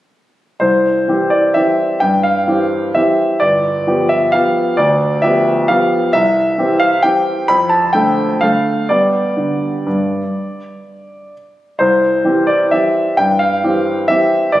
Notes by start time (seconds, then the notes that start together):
0.60 C2 C5
1.08 E3 C4 G4
1.30 D5
1.54 E3 C4 G4 E5
2.00 G2 G5
2.23 F5
2.48 E3 C4 G4
2.95 E3 C4 G4 E5
3.40 G1 D5
3.87 F3 B3 G4
4.09 E5
4.32 F3 B3 G4 F5
4.77 D2 D5
5.22 F3 B3 G4 E5
5.68 F3 B3 G4 F5
6.13 C2 E5
6.58 E3 C4 G4
6.80 F5
7.03 E3 C4 G4 G5
7.48 F2 B5
7.69 A5
7.93 D3 A3 A4 G5
8.41 D3 A3 A4 F5
8.89 G3 B3 G4 D5
9.37 D3
9.86 G2
11.79 C2 C5
12.25 E3 C4 G4
12.47 D5
12.71 E3 C4 G4 E5
13.17 G2 G5
13.39 F5
13.64 E3 C4 G4
14.08 E3 C4 G4 E5
14.52 G1 D5